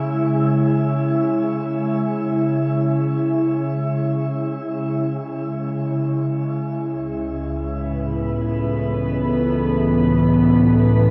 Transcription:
Already playing: ambient pad C#3 G#3 E4
0.06 synth drone C#3 G#3
6.91 ambient pad C#2
7.45 ambient pad B4
7.72 ambient pad A2
7.89 ambient pad B3
8.43 ambient pad E3

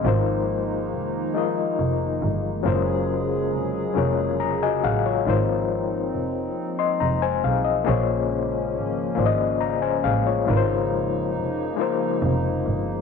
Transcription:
Already playing: analog synth pad D#3 F3 G#3 A#3
0.03 double bass G#1, reed electric piano G#3 D#4 F4 A#4, analog synth pad D#4
0.08 reed electric piano C5
0.92 double bass F1
1.34 reed electric piano G#3 D#4 F4 A#4 D#5
1.79 double bass F1
2.22 double bass G1
2.63 double bass F#1, analog synth pad C#3 F#3 G#3 G#4, reed electric piano F#3 C#4 F4 G#4 A#4
2.67 reed electric piano C5
3.53 double bass F1
3.94 double bass F1, reed electric piano F#3 C#4 F4 G#4 A#4
3.98 reed electric piano C#5
4.40 reed electric piano A#5
4.63 reed electric piano F#4 D#5 G#5
4.83 double bass A1, reed electric piano G#4 F5 F#5
5.06 reed electric piano F4 C#5
5.25 double bass G#1, analog synth pad F3 G#3 C4 D#4, reed electric piano G#3 D#4 F4 A#4
5.29 reed electric piano C5
6.14 double bass F1
6.79 reed electric piano D#5 C6
7.00 double bass F1, reed electric piano A#5
7.22 reed electric piano C5 G#5
7.44 double bass B1, reed electric piano G#4 F5
7.64 reed electric piano D#5
7.84 double bass A#1, analog synth pad C#3 A#3 C#4, reed electric piano A#3 F4 G#4 C5 C#5
8.75 double bass G#1
9.15 double bass G#1, reed electric piano A#3 F4 G#4 C5
9.19 reed electric piano D5
9.26 reed electric piano D#5
9.61 reed electric piano A#5
9.82 reed electric piano C5 G#5
10.04 double bass A1, reed electric piano G#4 F5
10.27 reed electric piano F4 C#5
10.45 double bass G#1, analog synth pad F3 A#3 D#4, reed electric piano G#3 D#4 F4 A#4
10.50 reed electric piano B4
10.57 reed electric piano C5
11.36 double bass F1
11.77 reed electric piano G#3 D#4 F4 A#4
11.81 reed electric piano C5
12.22 double bass F1
12.66 double bass G1

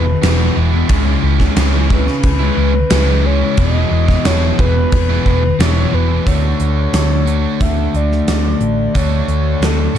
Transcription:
Already playing: picked electric bass E1, soft synth lead B4
0.06 muted overdriven electric guitar stroke, muted distorted electric guitar stroke
0.22 picked electric bass E1, overdriven electric guitar E2 B2 E3 G#3 B3 E4, snare, crash
0.55 picked electric bass E1, distorted electric guitar E2 B2, overdriven electric guitar E3 G#3 B3 E4
0.72 distorted electric guitar B2, overdriven electric guitar E3 G#3 B3 E4
0.89 picked electric bass C#2, overdriven electric guitar C#3 E3 G#3 C#4 E4, kick, crash
1.05 distorted electric guitar G#3 C#4
1.22 picked electric bass C#2, overdriven electric guitar E3 G#3 C#4 E4
1.39 distorted electric guitar G#3 C#4, kick, snare
1.56 picked electric bass C#2, overdriven electric guitar C#3 E3 G#3 C#4 E4, snare, crash
1.89 distorted electric guitar C#3, overdriven electric guitar E3 G#3 C#4 E4, soft synth lead B4, kick
2.07 muted distorted electric guitar stroke, muted overdriven electric guitar stroke, snare
2.23 picked electric bass C#2, kick, crash
2.39 overdriven electric guitar G#3 C#4 E4
2.57 picked electric bass C#2, overdriven electric guitar E3 G#3 C#4 E4
2.74 muted distorted electric guitar stroke, muted overdriven electric guitar stroke
2.90 picked electric bass C#2, overdriven electric guitar C#3 E3 G#3 C#4 E4, snare, crash
3.24 distorted electric guitar C#3, overdriven electric guitar E3 G#3 C#4 E4, soft synth lead C#5
3.41 overdriven electric guitar G#3 C#4 E4
3.57 picked electric bass E1, overdriven electric guitar E2 B2 E3 G#3 B3 E4, soft synth lead D#5, kick, crash
3.75 distorted electric guitar B2 E3
3.91 picked electric bass E1, overdriven electric guitar E3 G#3 B3 E4
4.08 distorted electric guitar E3, kick, snare
4.13 distorted electric guitar B2
4.24 picked electric bass E1, overdriven electric guitar E2 B2 E3 G#3 B3 E4, soft synth lead C#5, snare, crash
4.59 picked electric bass E1, distorted electric guitar E2 B2, overdriven electric guitar E3 G#3 B3 E4, soft synth lead B4, kick
4.76 muted overdriven electric guitar stroke, muted distorted electric guitar stroke
4.92 picked electric bass E1, kick, crash
5.09 distorted electric guitar B2, overdriven electric guitar E3 G#3 B3 E4
5.25 picked electric bass E1, overdriven electric guitar E3 G#3 B3 E4, kick
5.43 muted overdriven electric guitar stroke, muted distorted electric guitar stroke
5.59 picked electric bass E1, overdriven electric guitar E2 B2 E3 G#3 B3 E4, soft synth lead C#5, snare, crash
5.92 picked electric bass E1, distorted electric guitar E2 B2, overdriven electric guitar E3 G#3 B3 E4, soft synth lead B4
5.97 distorted electric guitar E3
6.08 overdriven electric guitar E3 G#3 B3 E4
6.14 distorted electric guitar B2
6.25 picked electric bass D2, overdriven electric guitar D3 A3 D4 F#4, soft synth lead C#5, kick, closed hi-hat
6.60 picked electric bass D2, closed hi-hat
6.93 picked electric bass D2, snare, closed hi-hat
7.26 overdriven electric guitar D3 A3 D4 F#4, closed hi-hat
7.61 picked electric bass D2, soft synth lead E5, kick, closed hi-hat
7.94 picked electric bass D2, soft synth lead D5, closed hi-hat
8.12 snare
8.27 picked electric bass D2, snare, closed hi-hat
8.61 picked electric bass A1, closed hi-hat
8.94 picked electric bass D2, overdriven electric guitar D3 A3 D4 F#4, soft synth lead C#5, kick, closed hi-hat
9.28 picked electric bass D2, closed hi-hat
9.60 picked electric bass D2, soft synth lead A4, snare, closed hi-hat
9.94 picked electric bass A2, overdriven electric guitar F#4

